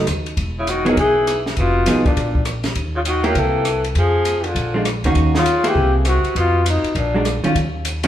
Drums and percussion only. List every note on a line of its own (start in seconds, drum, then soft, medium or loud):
0.07 cross-stick medium
0.07 hi-hat pedal soft
0.07 ride medium
0.26 ride soft
0.37 kick soft
0.37 ride soft
0.67 hi-hat pedal medium
0.67 ride medium
0.86 ride soft
0.97 kick soft
0.97 ride soft
1.27 cross-stick medium
1.27 hi-hat pedal soft
1.27 ride medium
1.46 snare soft
1.57 kick soft
1.57 ride soft
1.86 snare soft
1.86 hi-hat pedal medium
1.86 ride medium
2.06 kick soft
2.06 ride soft
2.17 kick soft
2.17 ride medium
2.35 kick soft
2.45 cross-stick soft
2.45 hi-hat pedal medium
2.45 ride medium
2.64 snare soft
2.64 ride soft
2.75 kick soft
2.75 ride soft
3.05 hi-hat pedal soft
3.05 ride medium
3.24 ride soft
3.35 kick soft
3.35 ride medium
3.65 cross-stick soft
3.65 hi-hat pedal soft
3.65 ride soft
3.84 ride soft
3.95 kick soft
3.95 ride soft
4.25 hi-hat pedal soft
4.25 ride medium
4.44 ride soft
4.55 kick soft
4.55 ride medium
4.85 cross-stick medium
4.85 hi-hat pedal soft
4.85 ride medium
5.04 ride soft
5.15 kick soft
5.15 ride soft
5.35 snare soft
5.46 hi-hat pedal medium
5.46 ride medium
5.64 ride medium
5.75 kick soft
6.05 cross-stick soft
6.05 hi-hat pedal soft
6.05 ride medium
6.24 ride soft
6.35 kick soft
6.35 ride soft
6.66 hi-hat pedal medium
6.66 ride medium
6.84 ride soft
6.95 kick soft
6.95 ride soft
7.25 cross-stick medium
7.25 hi-hat pedal soft
7.25 ride medium
7.44 ride soft
7.55 kick soft
7.55 ride soft
7.85 hi-hat pedal medium
7.85 ride medium
8.03 ride medium